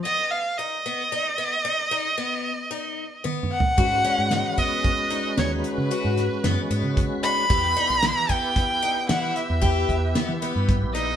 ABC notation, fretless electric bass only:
X:1
M:7/4
L:1/16
Q:1/4=113
K:Blyd
V:1 name="Fretless electric bass" clef=bass
z24 z4 | [K:G#m] G,,2 z G,,2 z6 z D,,2 z C, z G,,2 z F,, z G,, C,2 z3 | E,,2 z B,,,2 z6 z E,2 z E,,3 E,,2 z E,2 =G,,2 A,,,3 |]